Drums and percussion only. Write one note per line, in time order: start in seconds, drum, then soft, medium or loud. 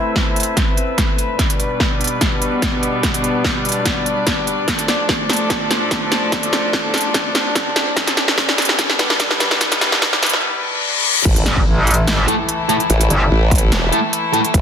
0.16 kick medium
0.16 snare medium
0.36 closed hi-hat soft
0.40 closed hi-hat medium
0.43 closed hi-hat medium
0.57 kick medium
0.57 snare medium
0.57 closed hi-hat medium
0.77 closed hi-hat medium
0.98 kick loud
0.98 snare medium
0.98 closed hi-hat medium
1.18 closed hi-hat medium
1.39 kick loud
1.39 snare medium
1.39 closed hi-hat medium
1.50 closed hi-hat medium
1.60 closed hi-hat medium
1.80 kick medium
1.80 snare medium
2.01 closed hi-hat soft
2.04 closed hi-hat medium
2.07 closed hi-hat medium
2.21 kick medium
2.21 snare medium
2.21 closed hi-hat medium
2.42 closed hi-hat medium
2.62 kick loud
2.62 snare medium
2.62 closed hi-hat medium
2.83 closed hi-hat medium
3.03 kick loud
3.03 snare medium
3.03 closed hi-hat medium
3.14 closed hi-hat medium
3.24 closed hi-hat medium
3.44 kick medium
3.44 snare medium
3.65 closed hi-hat soft
3.69 closed hi-hat medium
3.72 closed hi-hat medium
3.86 kick medium
3.86 snare medium
3.86 closed hi-hat medium
4.06 closed hi-hat medium
4.27 kick loud
4.27 snare medium
4.27 closed hi-hat medium
4.47 closed hi-hat medium
4.68 kick loud
4.68 snare medium
4.68 closed hi-hat medium
4.79 closed hi-hat medium
4.88 snare medium
4.88 closed hi-hat soft
5.09 kick loud
5.09 snare medium
5.30 snare medium
5.30 closed hi-hat soft
5.33 closed hi-hat medium
5.36 closed hi-hat medium
5.50 kick medium
5.50 snare medium
5.50 closed hi-hat medium
5.71 snare medium
5.71 closed hi-hat soft
5.91 kick loud
5.91 snare medium
5.91 closed hi-hat medium
6.12 snare medium
6.12 closed hi-hat soft
6.32 kick loud
6.32 snare medium
6.32 closed hi-hat medium
6.43 closed hi-hat medium
6.53 snare medium
6.53 closed hi-hat soft
6.73 kick medium
6.73 snare medium
6.94 snare medium
6.94 closed hi-hat soft
6.97 closed hi-hat medium
7.01 closed hi-hat medium
7.14 kick medium
7.14 snare medium
7.14 closed hi-hat medium
7.35 snare medium
7.35 closed hi-hat medium
7.55 kick loud
7.55 snare medium
7.55 closed hi-hat medium
7.76 snare medium
7.76 closed hi-hat medium
7.96 kick loud
7.96 snare medium
7.96 closed hi-hat medium
8.07 snare medium
8.07 closed hi-hat medium
8.17 snare medium
8.17 closed hi-hat medium
8.28 snare medium
8.38 kick loud
8.38 snare medium
8.49 snare medium
8.58 snare medium
8.58 closed hi-hat soft
8.62 closed hi-hat medium
8.65 closed hi-hat medium
8.69 snare medium
8.79 kick medium
8.79 snare loud
8.79 closed hi-hat medium
8.90 snare medium
8.99 snare loud
8.99 closed hi-hat medium
9.10 snare medium
9.20 kick loud
9.20 snare loud
9.20 closed hi-hat medium
9.31 snare medium
9.40 snare loud
9.40 closed hi-hat medium
9.51 snare medium
9.61 kick loud
9.61 snare loud
9.61 closed hi-hat medium
9.72 snare medium
9.72 closed hi-hat medium
9.81 snare loud
9.81 closed hi-hat medium
9.92 snare medium
10.02 kick loud
10.02 snare loud
10.13 snare medium
10.23 snare loud
10.23 closed hi-hat medium
10.26 closed hi-hat medium
10.29 closed hi-hat medium
10.33 snare medium
11.25 kick loud
11.25 closed hi-hat medium
11.25 crash loud
11.36 closed hi-hat medium
11.46 snare medium
11.46 closed hi-hat medium
11.57 kick medium
11.87 closed hi-hat medium
11.91 closed hi-hat medium
11.94 closed hi-hat medium
12.07 snare loud
12.07 closed hi-hat medium
12.28 closed hi-hat medium
12.49 closed hi-hat medium
12.69 closed hi-hat medium
12.80 closed hi-hat soft
12.90 closed hi-hat medium
13.01 closed hi-hat medium
13.10 closed hi-hat medium
13.51 kick loud
13.51 closed hi-hat medium
13.55 closed hi-hat medium
13.58 closed hi-hat medium
13.72 snare loud
13.72 closed hi-hat medium
13.93 closed hi-hat medium
14.13 closed hi-hat medium
14.34 closed hi-hat medium
14.44 closed hi-hat soft
14.54 kick loud
14.54 closed hi-hat medium